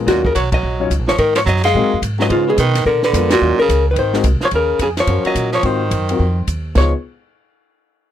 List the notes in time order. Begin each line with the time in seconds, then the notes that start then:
0.06 D#2 A#2 F#3 C#4 D#4 F4 F#4 A#4, kick, snare, ride
0.24 C#3 A#4, kick
0.35 B1 F#3 C#5, kick, hi-hat pedal, ride
0.52 F#3 D#5, kick, ride
0.63 A#1
0.79 F#3 C#4 D#4 F4 C#5
0.90 C#2, kick, hi-hat pedal, ride
0.99 A#1
1.07 F#1 F3 C#5, snare
1.18 G#2 D#3 A#4, kick, ride
1.35 F3 C#5, snare, ride
1.46 F#2 F#3 D#5, kick, hi-hat pedal
1.57 snare
1.64 G#3 F5, snare, ride
1.74 A#2 G#3 C4 D#4 F#4 A#4, kick
1.84 G#2
1.94 F#2
2.02 G#2, kick, hi-hat pedal, ride
2.19 F#3 G#3 C#4 D#4 F4 B4 D#5, snare
2.29 G#2 C#3 F4, kick, ride
2.47 B2 G#4
2.58 B2 D#3 B4, kick, hi-hat pedal, ride
2.75 snare, ride
2.86 A#2 D3 A#4, kick
3.03 D3 B4, snare
3.13 F2 G#3 B3 D4 F4 A#4, kick, hi-hat pedal, ride
3.30 A#2 F#4, snare, ride
3.41 D#2 F#3 C#4 D#4 F4 A#4
3.59 C#3 A#4, muted upright bass stroke
3.69 C#2, kick, hi-hat pedal, ride
3.91 D#3 B4
3.96 G#1 D#3 C5, kick, ride
4.14 G#3 C4 D#4 F#4 A#4, snare
4.23 C2, kick, hi-hat pedal, ride
4.41 F3, muted upright bass stroke, snare
4.45 C#5
4.51 D#2 C#3, kick, ride
4.56 A#4
4.79 F2 C#3 G#4, kick, hi-hat pedal, ride
4.97 F3 C#5, snare, ride
5.07 F#2 C#4 F4 F#4 A#4, kick, ride
5.25 F#3 D#5, muted upright bass stroke, ride
5.35 A#2, kick, hi-hat pedal, ride
5.52 F3 C#5, snare
5.63 G#2 D#3 C4 F4 F#4 A#4 C5, kick, ride
5.91 F#2, kick, hi-hat pedal, ride
6.09 C4 F4 F#4 A#4, ride
6.19 F2, kick
6.47 D#2, kick, hi-hat pedal, ride
6.75 C#2 F3 B3 D#4 F4 G#4 C#5, kick, snare, crash